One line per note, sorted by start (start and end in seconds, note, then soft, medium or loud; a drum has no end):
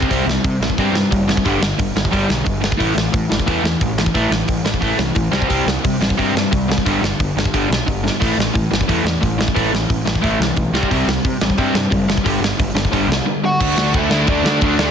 0.02 kick loud
0.10 0.21 C2 medium
0.10 0.25 C3 medium
0.10 0.26 G3 loud
0.10 0.27 C4 medium
0.10 kick medium
0.10 open hi-hat medium
0.26 0.37 C2 medium
0.26 0.42 C3 medium
0.26 0.42 G3 medium
0.26 snare loud
0.44 0.55 C3 medium
0.44 0.60 C3 medium
0.44 0.60 G3 medium
0.44 kick loud
0.44 open hi-hat medium
0.60 0.71 A1 medium
0.60 0.77 C3 medium
0.60 0.77 G3 medium
0.60 snare loud
0.70 kick medium
0.78 0.88 G2 medium
0.78 0.94 C3 medium
0.78 0.94 G3 medium
0.78 0.94 C4 loud
0.78 kick medium
0.78 open hi-hat medium
0.92 1.03 G2 medium
0.92 1.09 C3 medium
0.92 1.10 G3 medium
0.92 snare medium
1.11 1.32 F#1 medium
1.11 1.26 C3 medium
1.11 1.27 G3 medium
1.11 kick loud
1.11 open hi-hat medium
1.28 1.43 C3 medium
1.28 1.43 G3 medium
1.28 snare loud
1.37 kick medium
1.45 1.56 G1 medium
1.45 1.60 G2 medium
1.45 1.60 D3 loud
1.45 1.61 G3 medium
1.45 kick medium
1.45 open hi-hat medium
1.61 1.72 G1 medium
1.61 1.77 G2 medium
1.61 1.77 D3 medium
1.61 snare loud
1.79 1.90 G1 medium
1.79 1.94 G2 medium
1.79 1.94 D3 medium
1.79 kick loud
1.79 open hi-hat medium
1.95 2.06 G1 medium
1.95 2.10 G2 medium
1.95 2.11 D3 medium
1.95 snare loud
2.05 kick medium
2.11 2.24 G1 loud
2.11 2.28 G2 medium
2.11 2.28 D3 medium
2.11 2.28 G3 medium
2.11 kick medium
2.11 open hi-hat medium
2.29 2.40 B1 medium
2.29 2.44 G2 medium
2.29 2.44 D3 medium
2.29 snare loud
2.45 2.68 G1 medium
2.45 2.60 G2 medium
2.45 2.61 D3 medium
2.45 kick loud
2.45 open hi-hat soft
2.61 2.77 G2 medium
2.61 2.77 D3 medium
2.61 snare loud
2.72 kick medium
2.78 2.91 A1 medium
2.78 2.93 A2 medium
2.78 2.94 E3 medium
2.78 2.95 A3 medium
2.78 kick medium
2.78 open hi-hat medium
2.95 3.07 A1 medium
2.95 3.11 A2 medium
2.95 3.11 E3 medium
2.95 snare loud
3.12 3.28 A2 medium
3.12 3.24 A2 medium
3.12 3.28 E3 medium
3.12 kick loud
3.12 open hi-hat medium
3.29 3.41 G1 medium
3.29 3.45 A2 medium
3.29 3.45 E3 medium
3.29 snare loud
3.40 kick medium
3.46 3.58 E2 medium
3.46 3.63 A2 medium
3.46 3.63 E3 medium
3.46 3.63 A3 loud
3.46 kick medium
3.46 open hi-hat medium
3.63 3.74 E2 medium
3.63 3.79 A2 medium
3.63 3.79 E3 medium
3.63 snare loud
3.81 4.02 A1 medium
3.81 3.97 A2 medium
3.81 3.97 E3 medium
3.81 kick loud
3.81 open hi-hat soft
3.98 4.13 A2 medium
3.98 4.13 E3 medium
3.98 snare loud
4.06 kick medium
4.14 4.25 A1 medium
4.14 4.30 A2 medium
4.14 4.30 E3 loud
4.14 4.31 A3 medium
4.14 kick medium
4.14 open hi-hat medium
4.31 4.42 A1 medium
4.31 4.47 A2 medium
4.31 4.47 E3 medium
4.31 snare loud
4.48 4.60 A1 medium
4.48 4.64 A2 medium
4.48 4.64 E3 medium
4.48 kick loud
4.48 open hi-hat medium
4.64 4.75 A1 medium
4.64 4.80 A2 medium
4.64 4.81 E3 medium
4.64 snare loud
4.74 kick medium
4.81 4.92 A1 medium
4.81 4.97 A2 medium
4.81 4.97 E3 medium
4.81 4.98 A3 loud
4.81 kick medium
4.81 open hi-hat medium
4.98 5.09 C2 loud
4.98 5.14 A2 medium
4.98 5.14 E3 medium
4.98 snare loud
5.15 5.27 A1 medium
5.15 5.31 A2 medium
5.15 5.31 E3 medium
5.15 kick medium
5.15 open hi-hat medium
5.31 5.42 C2 medium
5.31 5.47 C3 loud
5.31 5.48 G3 loud
5.31 5.48 C4 loud
5.31 snare loud
5.42 kick medium
5.49 5.61 C2 medium
5.49 5.65 C3 medium
5.49 5.65 G3 medium
5.49 5.66 C4 medium
5.49 kick medium
5.49 open hi-hat medium
5.66 5.77 C2 medium
5.66 5.82 C3 medium
5.66 5.83 G3 medium
5.66 snare loud
5.84 5.99 C3 medium
5.84 5.95 C3 medium
5.84 5.99 G3 medium
5.84 kick loud
5.84 open hi-hat medium
6.00 6.11 A1 medium
6.00 6.16 C3 medium
6.00 6.16 G3 medium
6.00 snare loud
6.10 kick medium
6.18 6.29 G2 loud
6.18 6.34 C3 medium
6.18 6.34 G3 medium
6.18 6.34 C4 loud
6.18 kick medium
6.18 open hi-hat medium
6.34 6.45 G2 medium
6.34 6.50 C3 medium
6.34 6.50 G3 medium
6.34 snare loud
6.51 6.73 C2 medium
6.51 6.67 C3 medium
6.51 6.67 G3 medium
6.51 kick loud
6.51 open hi-hat medium
6.68 6.84 C3 medium
6.68 6.84 G3 medium
6.68 snare loud
6.78 kick medium
6.85 6.96 G1 medium
6.85 7.01 G2 medium
6.85 7.01 D3 medium
6.85 7.02 G3 medium
6.85 kick medium
6.85 open hi-hat medium
7.01 7.12 G1 medium
7.01 7.17 G2 medium
7.01 7.18 D3 medium
7.01 snare loud
7.19 7.30 G1 medium
7.19 7.35 G2 medium
7.19 7.35 D3 medium
7.19 kick loud
7.19 open hi-hat medium
7.35 7.46 G1 medium
7.35 7.52 G2 medium
7.35 7.52 D3 medium
7.35 snare medium
7.45 kick medium
7.54 7.65 G1 medium
7.54 7.68 G2 medium
7.54 7.69 D3 medium
7.54 7.70 G3 loud
7.54 kick medium
7.54 open hi-hat medium
7.69 7.80 B1 medium
7.69 7.85 G2 medium
7.69 7.85 D3 medium
7.69 snare loud
7.87 8.08 G1 medium
7.87 8.02 G2 medium
7.87 8.02 D3 medium
7.87 kick medium
7.87 open hi-hat soft
8.04 8.19 G2 medium
8.04 8.19 D3 medium
8.04 snare medium
8.20 8.32 A1 medium
8.20 8.36 A2 medium
8.20 8.36 E3 medium
8.20 8.37 A3 loud
8.20 kick loud
8.20 open hi-hat medium
8.20 splash medium
8.37 8.48 A1 medium
8.37 8.53 A2 medium
8.37 8.53 E3 medium
8.37 snare loud
8.54 8.70 A2 medium
8.54 8.65 A2 medium
8.54 8.70 E3 medium
8.54 kick loud
8.54 open hi-hat medium
8.71 8.82 G1 medium
8.71 8.86 A2 medium
8.71 8.86 E3 medium
8.71 snare loud
8.81 kick medium
8.88 8.99 E2 medium
8.88 9.03 A2 medium
8.88 9.04 E3 medium
8.88 9.04 A3 medium
8.88 kick medium
8.88 open hi-hat medium
9.04 9.15 E2 medium
9.04 9.20 A2 medium
9.04 9.20 E3 medium
9.04 snare loud
9.21 9.44 A1 medium
9.21 9.37 A2 medium
9.21 9.37 E3 medium
9.21 kick medium
9.21 open hi-hat soft
9.38 9.53 A2 medium
9.38 9.54 E3 medium
9.38 snare loud
9.48 kick medium
9.55 9.67 A1 medium
9.55 9.71 A2 medium
9.55 9.71 E3 medium
9.55 9.72 A3 medium
9.55 kick medium
9.55 open hi-hat medium
9.72 9.83 A1 medium
9.72 9.88 A2 medium
9.72 9.88 E3 medium
9.72 snare loud
9.89 10.00 A1 medium
9.89 10.04 A2 medium
9.89 10.05 E3 medium
9.89 kick loud
9.89 open hi-hat medium
10.05 10.17 A1 medium
10.05 10.20 A2 medium
10.05 10.21 E3 medium
10.05 snare loud
10.15 kick medium
10.21 10.34 A1 loud
10.21 10.38 A2 medium
10.21 10.39 E3 medium
10.21 10.39 A3 medium
10.21 kick medium
10.21 open hi-hat medium
10.39 10.50 C2 medium
10.39 10.55 A2 medium
10.39 10.55 E3 medium
10.39 snare loud
10.56 10.68 B1 medium
10.56 10.72 A2 medium
10.56 10.72 E3 medium
10.56 kick loud
10.56 open hi-hat soft
10.72 10.83 C2 medium
10.72 10.90 C3 loud
10.72 10.90 G3 loud
10.72 10.90 C4 loud
10.72 snare loud
10.83 kick medium
10.91 11.02 C2 medium
10.91 11.07 C3 medium
10.91 11.07 G3 loud
10.91 11.08 C4 medium
10.91 kick medium
10.91 open hi-hat medium
11.07 11.18 C2 medium
11.07 11.23 C3 medium
11.07 11.23 G3 medium
11.07 snare loud
11.25 11.35 C3 medium
11.25 11.40 C3 medium
11.25 11.41 G3 medium
11.25 kick loud
11.25 open hi-hat medium
11.41 11.52 A1 medium
11.41 11.57 C3 medium
11.41 11.57 G3 medium
11.41 snare loud
11.50 kick medium
11.58 11.69 G2 medium
11.58 11.74 C3 medium
11.58 11.74 G3 medium
11.58 11.75 C4 medium
11.58 kick medium
11.58 open hi-hat soft
11.74 11.85 G2 medium
11.74 11.89 C3 medium
11.74 11.90 G3 medium
11.74 snare loud
11.90 12.13 F#1 medium
11.90 12.07 C3 medium
11.90 12.07 G3 medium
11.90 kick medium
11.90 open hi-hat soft
12.09 12.24 C3 medium
12.09 12.24 G3 medium
12.09 snare loud
12.17 kick medium
12.24 12.36 G1 medium
12.24 12.40 G2 medium
12.24 12.40 D3 medium
12.24 12.41 G3 medium
12.24 kick medium
12.24 open hi-hat medium
12.40 12.52 G1 medium
12.40 12.57 G2 medium
12.40 12.57 D3 medium
12.44 snare loud
12.59 12.70 G1 medium
12.59 12.74 G2 medium
12.59 12.74 D3 medium
12.59 kick loud
12.59 open hi-hat medium
12.73 12.85 G1 medium
12.73 12.90 G2 medium
12.73 12.91 D3 medium
12.73 snare loud
12.85 kick medium
12.92 13.03 G1 medium
12.92 13.08 G2 medium
12.92 13.09 D3 medium
12.92 13.09 G3 medium
12.92 kick medium
12.92 open hi-hat soft
13.08 13.19 C2 medium
13.08 13.25 G2 medium
13.08 13.25 D3 medium
13.12 snare loud
13.26 13.42 G2 medium
13.26 13.42 D3 medium
13.43 13.59 G2 medium
13.43 13.59 D3 medium
13.43 13.91 F#4 medium
13.43 13.97 F#5 loud
13.60 13.76 D2 medium
13.60 13.79 D3 loud
13.60 13.78 A3 loud
13.60 13.77 D4 loud
13.60 kick loud
13.60 crash loud
13.60 crash medium
13.76 13.92 D2 medium
13.76 13.94 D3 medium
13.76 13.95 A3 loud
13.76 13.95 D4 loud
13.76 snare loud
13.94 14.09 D2 loud
13.94 14.10 D3 medium
13.94 14.11 A3 medium
13.94 14.10 D4 medium
13.94 14.27 E4 medium
13.94 kick loud
13.94 crash medium
13.98 14.31 E5 medium
14.10 14.26 D2 medium
14.10 14.27 D3 medium
14.10 14.28 A3 medium
14.10 14.28 D4 loud
14.10 snare loud
14.27 14.42 D2 loud
14.27 14.44 D3 medium
14.27 14.44 A3 loud
14.27 14.59 D4 medium
14.27 14.43 D4 medium
14.27 14.60 D5 loud
14.27 kick loud
14.27 crash medium
14.43 14.59 D3 medium
14.43 14.60 D3 medium
14.43 14.62 A3 medium
14.43 14.61 D4 medium
14.43 snare loud
14.61 14.77 D2 medium
14.61 14.79 D3 medium
14.61 14.79 A3 medium
14.61 14.78 D4 medium
14.61 kick loud
14.61 crash medium
14.65 14.79 D5 loud
14.78 14.91 D2 medium
14.78 14.91 D3 medium
14.78 14.91 A3 loud
14.78 14.91 D4 loud
14.78 snare loud
14.82 14.91 A3 medium
14.82 14.91 A4 medium